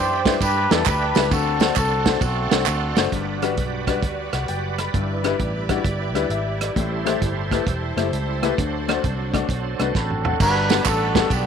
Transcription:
Already playing: fingered electric bass F#2, grand piano E3, horn section D4 G4 C5, tonewheel organ G4 D5 E5 B5
0.26 grand piano G3 D4 E4 B4, kick, snare, ride bell, tambourine
0.41 fingered electric bass G2, horn section D4 G4 B4, kick, ride bell, tambourine
0.71 fingered electric bass E2, grand piano G3 D4 E4 B4, horn section A4, snare, ride bell, tambourine
0.86 fingered electric bass D2, horn section D4 G4 B4, kick, clap, ride bell, tambourine
1.15 fingered electric bass C#2, grand piano G3 D4 E4 B4, snare, ride bell, tambourine
1.31 fingered electric bass D2, grand piano D3, horn section C4 F#4 A4, tonewheel organ A4 D5 F#5 C6, kick, ride bell, tambourine
1.60 grand piano A3 D4 F#4 C5, snare, ride bell, tambourine
1.76 fingered electric bass C2, horn section C4 F#4 A4, kick, clap, ride bell, tambourine
2.06 grand piano A3 D4 F#4 C5, kick, snare, ride bell, tambourine
2.21 fingered electric bass B1, horn section A3 C4 F#4, kick, ride bell, tambourine
2.51 fingered electric bass C2, grand piano A3 D4 F#4 C5, snare, ride bell, tambourine
2.66 fingered electric bass D2, clap, ride bell, tambourine
2.96 fingered electric bass F#1, grand piano A3 D4 F#4 C5, snare, ride bell, tambourine
3.12 fingered electric bass G1, grand piano G2, tonewheel organ G3 F#4 B4 D5, string section G3 F#4 B4 D5, kick, closed hi-hat
3.42 grand piano G3 D4 F#4 B4, cross-stick, closed hi-hat
3.57 fingered electric bass B1, kick, closed hi-hat
3.87 grand piano G3 D4 F#4 B4, kick, cross-stick, closed hi-hat
4.02 fingered electric bass D2, kick, closed hi-hat
4.33 fingered electric bass C2, grand piano F#5, cross-stick, closed hi-hat
4.48 fingered electric bass F#1, grand piano G5, closed hi-hat
4.78 grand piano B5, cross-stick, closed hi-hat
4.94 fingered electric bass G1, grand piano G2, string section E4 G4 D5, tonewheel organ E4, kick, closed hi-hat
5.24 grand piano G3 D4 E4 B4, cross-stick, closed hi-hat
5.39 fingered electric bass A1, kick, closed hi-hat
5.69 grand piano G3 D4 E4 F#4, kick, cross-stick, closed hi-hat
5.85 fingered electric bass G1, kick, closed hi-hat
6.14 fingered electric bass D2, grand piano G3 D4 E4 B4, cross-stick, closed hi-hat
6.29 fingered electric bass G#1, grand piano E5, closed hi-hat
6.61 grand piano D5, cross-stick, closed hi-hat
6.76 fingered electric bass A1, grand piano A2, tonewheel organ E4 A4 C5, string section A4 C5, kick, closed hi-hat
7.05 grand piano A3 E4 G4 C5, cross-stick, closed hi-hat
7.22 fingered electric bass G1, kick, closed hi-hat
7.51 grand piano A3 E4 G4 B4, kick, cross-stick, closed hi-hat
7.67 fingered electric bass E1, kick, closed hi-hat
7.96 fingered electric bass F#1, grand piano A3 E4 G4 C5, cross-stick, closed hi-hat
8.12 fingered electric bass C#2, closed hi-hat
8.43 grand piano A3 E4 G4 B4, cross-stick, closed hi-hat
8.58 fingered electric bass D2, grand piano D3, tonewheel organ F#3 D4, string section D4 F#4, kick, closed hi-hat
8.88 grand piano A3 D4 F#4 C5, cross-stick, closed hi-hat
9.04 fingered electric bass C2, kick, closed hi-hat
9.33 grand piano A3 D4 F#4 D5, kick, cross-stick, closed hi-hat
9.49 fingered electric bass B1, kick, closed hi-hat
9.79 fingered electric bass C2, grand piano A3 D4 F#4 B4, cross-stick, closed hi-hat
9.95 fingered electric bass A1, horn section C4 F#4 A4, grand piano B5, kick, snare
10.10 mid tom
10.25 grand piano F#5, floor tom
10.40 fingered electric bass G1, grand piano G2, tonewheel organ G3 D5 F#5 B5, horn section D4 F#4 B4, kick, crash, tambourine
10.69 grand piano G3 B3 D4 F#4 B4, snare, ride bell, tambourine
10.85 fingered electric bass A1, horn section D4 F#4 A4, kick, clap, ride bell, tambourine
11.15 grand piano G3 B3 D4 F#4 A4, kick, snare, ride bell, tambourine
11.30 fingered electric bass B1, horn section B3 D4 G4, kick, ride bell, tambourine

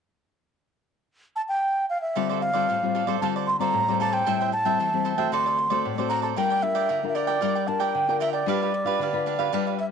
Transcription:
1.36 flute A5
1.49 flute G5
1.90 flute F5
2.01 flute E5
2.15 nylon-string guitar D3 G3 C4 F4, cavaquinho F4 A4 C5 D5
2.29 cavaquinho A4 C5 D5
2.41 flute F5, muted cavaquinho stroke
2.53 nylon-string guitar G3 C4 F4, cavaquinho A4 C5 D5
2.69 nylon-string guitar A2, cavaquinho F4 A4 C5 D5
2.83 nylon-string guitar G3 C4 F4
2.95 cavaquinho F4 A4 C5 D5
3.07 nylon-string guitar G3 C4 F4, cavaquinho A4 C5 D5
3.21 nylon-string guitar D3 G3 C4 F4, cavaquinho F4 A4 C5 D5, flute A5
3.36 cavaquinho A4 C5 D5
3.47 flute C6, muted cavaquinho stroke
3.59 nylon-string guitar G3 C4 F4, cavaquinho A4 C5 D5, flute A#5
3.74 nylon-string guitar A2
3.88 nylon-string guitar G3 C4 F4, cavaquinho A4 C5 D5
4.00 cavaquinho F4 A4 C5 D5, flute A5
4.12 cavaquinho A4 C5 D5, flute G5
4.26 nylon-string guitar A2 G3 C4 E4, cavaquinho A4 C5 E5 G5
4.40 cavaquinho C5 E5 G5
4.52 flute A5, muted cavaquinho stroke
4.65 nylon-string guitar G3 C4 E4, cavaquinho C5 E5 G5
4.79 nylon-string guitar E3, cavaquinho A4 C5 E5 G5
4.93 nylon-string guitar G3 C4 E4
5.05 cavaquinho A4 C5 E5 G5
5.17 nylon-string guitar A3 C4 F#4, cavaquinho C5 E5 G5
5.32 nylon-string guitar D3, cavaquinho F#4 A4 C5 D5, flute C6
5.46 cavaquinho A4 C5 D5
5.58 muted cavaquinho stroke
5.70 nylon-string guitar A3 C4 F#4, cavaquinho A4 C5 D5
5.85 nylon-string guitar A2
5.98 nylon-string guitar A3 C4 F#4, cavaquinho A4 C5 D5
6.09 cavaquinho F#4 A4 C5 D5, flute A#5
6.22 cavaquinho A4 C5 D5, flute A5
6.36 nylon-string guitar G3 D4 F4 A#4, cavaquinho F4 A#4 D5 G5, flute G5
6.50 cavaquinho A#4 D5 G5
6.63 nylon-string guitar D4 F4 A#4, flute E5, muted cavaquinho stroke
6.75 cavaquinho A#4 D5 G5
6.89 nylon-string guitar D3, cavaquinho F4 A#4 D5 G5
7.03 nylon-string guitar D4 F4 A#4
7.08 flute E5
7.15 cavaquinho F4 A#4 D5 G5, flute D5
7.27 cavaquinho A#4 D5 G5
7.41 nylon-string guitar G3 D4 F4 A#4, cavaquinho F4 A#4 D5 G5
7.55 cavaquinho A#4 D5 G5
7.67 nylon-string guitar D4 F4 A#4, flute A5, muted cavaquinho stroke
7.80 cavaquinho A#4 D5 G5, flute G5
7.95 nylon-string guitar D3
8.08 nylon-string guitar D4 F4 A#4, cavaquinho A#4 D5 G5
8.20 cavaquinho F4 A#4 D5 G5, flute E5
8.33 cavaquinho A#4 D5 G5, flute D5
8.46 nylon-string guitar G3 D4 F4 B4, cavaquinho D4 G4 B4 F5
8.62 cavaquinho G4 B4 F5
8.74 muted cavaquinho stroke
8.85 nylon-string guitar D4 F4 B4, cavaquinho G4 B4 F5
8.99 nylon-string guitar D3, cavaquinho D4 G4 B4 F5
9.13 nylon-string guitar D4 F4 B4
9.26 cavaquinho D4 G4 B4 F5
9.38 nylon-string guitar D4 F4 B4, cavaquinho G4 B4 F5
9.53 nylon-string guitar G3 D4 F4 B4, cavaquinho D4 G4 B4 F5
9.67 cavaquinho G4 B4 F5
9.78 flute E5, muted cavaquinho stroke

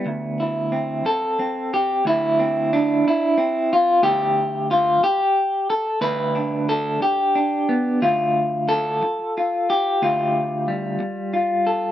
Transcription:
Already playing: clean electric guitar B3
0.06 clean electric guitar D2
0.40 clean electric guitar E4
0.72 clean electric guitar C4
1.05 clean electric guitar A4, muted clean electric guitar stroke
1.39 clean electric guitar C4
1.74 clean electric guitar G4
2.05 clean electric guitar D2 E4
2.39 clean electric guitar C4
2.73 clean electric guitar D4
3.04 clean electric guitar E4, muted clean electric guitar stroke
3.38 clean electric guitar C4
3.73 clean electric guitar F4
4.03 clean electric guitar D2 G4
4.71 clean electric guitar F4
5.01 clean electric guitar G4, muted clean electric guitar stroke
5.70 clean electric guitar A4
6.01 clean electric guitar D2 B4
6.35 clean electric guitar D4
6.69 clean electric guitar A4
7.01 clean electric guitar G4, muted clean electric guitar stroke
7.35 clean electric guitar D4
7.69 clean electric guitar B3
8.02 clean electric guitar D2 F4
8.69 clean electric guitar A4
9.02 muted clean electric guitar stroke
9.38 clean electric guitar F4
9.70 clean electric guitar G4
10.02 clean electric guitar D2 F4
10.68 clean electric guitar G3
11.00 muted clean electric guitar stroke
11.34 clean electric guitar F4
11.67 clean electric guitar A4

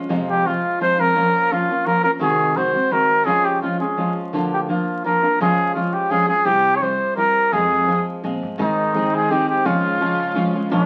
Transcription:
0.09 upright bass F1, nylon-string guitar F2 C3 F3 G#3 C4 F4
0.30 trumpet G4
0.45 nylon-string guitar F3 G#3 C4 F4, trumpet F4
0.80 nylon-string guitar F3 G#3 C4 F4, trumpet C5
0.99 nylon-string guitar F3 G#3 C4 F4, trumpet A#4
1.15 upright bass A#1, nylon-string guitar A#2 F3 A#3 C#4 F4
1.51 nylon-string guitar F3 A#3 C#4 F4, trumpet F4
1.70 nylon-string guitar A#3 C#4 F4
1.86 nylon-string guitar F3 A#3 C#4 F4, trumpet A#4
2.04 nylon-string guitar A#3 C#4 F4, trumpet A#4
2.19 upright bass C2, nylon-string guitar C3 D#3 G#3 C4 F#4, trumpet G#4
2.56 nylon-string guitar D#3 G#3 C4 F#4, trumpet C5
2.73 nylon-string guitar G#3 C4 F#4
2.90 nylon-string guitar D#3 G#3 C4 F#4, trumpet A#4
3.25 upright bass C#2, nylon-string guitar C#3 F3 G#3 C#4 F4, trumpet G#4
3.45 trumpet G4
3.62 nylon-string guitar F3 G#3 C#4 F4, trumpet F4
3.80 nylon-string guitar G#3 C#4 F4, trumpet G#4
3.97 nylon-string guitar F3 G#3 C#4 F4
4.33 upright bass D2, nylon-string guitar D3 F3 A#3 D4 F4
4.53 trumpet G4
4.69 nylon-string guitar F3 A#3 D4 F4, trumpet F4
5.04 nylon-string guitar F3 A#3 D4 F4, trumpet A#4
5.23 nylon-string guitar A#3 D4 F4
5.40 upright bass C#2, nylon-string guitar C#3 F3 G#3 C#4 F4, trumpet G#4
5.75 nylon-string guitar F3 G#3 C#4 F4, trumpet F4
5.94 trumpet G4
6.10 nylon-string guitar F3 G#3 C#4 F4, trumpet G#4
6.28 nylon-string guitar G#3 C#4 F4, trumpet G#4
6.45 upright bass C2, nylon-string guitar C3 G3 C4 E4 G4, trumpet G4
6.76 trumpet C#5
6.81 nylon-string guitar G3 C4 E4 G4, trumpet C5
7.16 nylon-string guitar G3 C4 E4 G4, trumpet A#4
7.52 nylon-string guitar F2 C3 F3 G#3 C4 G#4, upright bass F2, trumpet G#4
7.88 nylon-string guitar F3 G#3 C4 G#4
8.23 upright bass A#2, nylon-string guitar F3 G#3 C4 G#4
8.43 upright bass G#2
8.58 nylon-string guitar G#2 D#3 G#3 C4 D#4 G#4, upright bass G#2, analog synth pad D#3 G#3 C4, trumpet D#4
8.95 nylon-string guitar G#3 C4 D#4 G#4
9.15 trumpet G#4
9.30 nylon-string guitar G#3 C4 D#4 G#4, trumpet G4
9.49 trumpet G4
9.65 upright bass C#2, nylon-string guitar C#3 F3 G#3 C#4 F4, analog synth pad C#3 F4, trumpet F4
9.99 nylon-string guitar F3 G#3 C#4 F4
10.35 nylon-string guitar F3 G#3 C#4 F4
10.54 nylon-string guitar G#3 C#4 F4
10.71 upright bass A#1, nylon-string guitar A#2 F3 G#3 D4 F4, analog synth pad G#3 A#3 D4, trumpet D4

